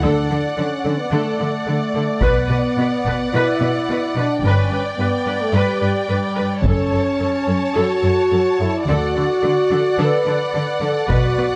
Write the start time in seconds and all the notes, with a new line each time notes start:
Already playing: F#5
0.02 D2 D3 D4 A4 D5
0.30 D3 A4
0.55 D3 C#4 A4
0.84 D3 A4
0.98 B3
1.10 D3 A3 A4
1.39 D3 A4
1.67 D3 A3 A4
1.95 D3 A4
2.21 B1 B2 B3 B4 F#5, taiko
2.49 B2 B4
2.77 B2 B4
3.05 B2 B4, taiko
3.33 B2 E4 B4
3.60 B2 B4
3.89 B2 B4
4.16 B2 D4 B4
4.42 G1 G2 C#4 D5 G5
4.46 B4
4.71 G2 B4
4.97 G2 B3 B4
5.26 G2 B4
5.41 A3
5.53 G2 G3 B4
5.81 G2 B4
6.09 G2 G3 B4
6.37 G2 B4
6.63 F#1 F#2 C#4 A4 C#5 A5, taiko
6.92 F#2 A4
7.19 F#2 A4
7.47 F#2 A4
7.74 F#2 F#4 A4
8.02 F#2 A4
8.31 F#2 A4
8.60 F#2 E4 A4
8.85 D2 D3 F#4 A4 D5 F#5
9.15 D3 A4
9.43 D3 A4
9.71 D3 A4
9.98 D3 A4 B4
10.26 D3 A4
10.54 D3 A4
10.81 D3 A4
11.08 B1 B2 F#4 B4, taiko
11.38 B2 B4